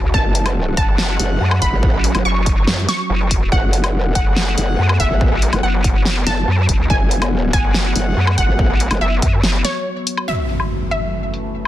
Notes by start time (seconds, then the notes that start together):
Already playing: F#3 C#4 F#4
0.03 C#2
0.14 F#1 A5, kick
0.35 closed hi-hat
0.46 G#3 A3 F#5, closed hi-hat, low woodblock
0.77 F#1 A5, kick, closed hi-hat
0.98 snare
1.20 F#1, closed hi-hat
1.41 F#2
1.51 low woodblock
1.62 F#1 B5, kick, closed hi-hat
1.72 A1
1.83 kick
1.94 A1
2.04 closed hi-hat
2.15 F#1 A3 G#4 F#5, closed hi-hat, low woodblock
2.25 F#1 C#6
2.46 kick, closed hi-hat
2.67 F#2, snare
2.89 C#6, snare, closed hi-hat
3.10 F#1
3.31 kick, closed hi-hat
3.52 F#1 B3 F#5, kick
3.73 closed hi-hat
3.84 A3 G#4 F#5, closed hi-hat, low woodblock
3.96 F1
4.15 F#1 F#5, kick, closed hi-hat
4.36 snare
4.58 F#1, closed hi-hat
4.79 F#2
4.89 low woodblock
5.00 F#1 E5, kick, closed hi-hat
5.10 A1
5.21 kick
5.32 A1
5.42 closed hi-hat
5.53 F#1 A3 G#4 F#5, closed hi-hat, low woodblock
5.63 F#1 F#5
5.84 kick, closed hi-hat
6.05 snare
6.27 F#1 A3 G#4 F#5 A5, snare, closed hi-hat
6.48 F#2
6.69 F#1, kick, closed hi-hat
6.79 C#2
6.90 F#1 G#5, kick
7.11 closed hi-hat
7.22 A3 G#4 F#5, closed hi-hat, low woodblock
7.53 F#1 G#5, kick, closed hi-hat
7.74 snare
7.96 F#1, closed hi-hat
8.17 F#2
8.27 low woodblock
8.38 F#1 F#5, kick, closed hi-hat
8.48 A1
8.59 kick
8.70 A1
8.80 closed hi-hat
8.91 F#1 A3 G#4 F#5, closed hi-hat, low woodblock
9.01 F#1 E5
9.22 F#2, kick, closed hi-hat
9.43 F#1, snare
9.65 C#5, snare, closed hi-hat
10.07 closed hi-hat
10.17 low woodblock
10.28 F#2 E3 A3 E5, crash, impact
10.49 closed hi-hat
10.60 closed hi-hat, low woodblock
10.91 E5, closed hi-hat
11.34 closed hi-hat